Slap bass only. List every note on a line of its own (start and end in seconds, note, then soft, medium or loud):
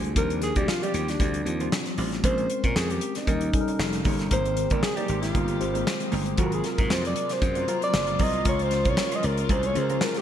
0.00 0.16 D2 medium
0.16 0.50 D#2 loud
0.56 0.66 D2 medium
0.94 1.16 D#2 medium
1.20 1.42 D2 medium
1.46 1.68 D#2 medium
1.98 2.20 A1 medium
2.24 2.46 A#1 loud
2.64 2.74 A#2 medium
2.76 2.98 F2 medium
3.27 3.49 D#2 medium
3.79 4.01 F1 medium
4.05 4.27 G1 medium
4.31 4.65 G#1 loud
4.71 4.81 G1 medium
5.09 5.31 G#1 medium
5.35 5.57 G1 loud
5.61 5.83 G#1 medium
6.13 6.35 G1 medium
6.38 6.60 G#1 loud
6.78 6.89 G#2 medium
6.90 7.12 F2 medium
7.42 7.64 F#2 medium
7.94 8.16 F#1 loud
8.20 8.42 C2 medium
8.46 8.85 C#2 loud
8.85 8.96 C2 medium
9.24 9.46 C#2 medium
9.49 9.71 C2 loud
9.75 9.97 C#2 medium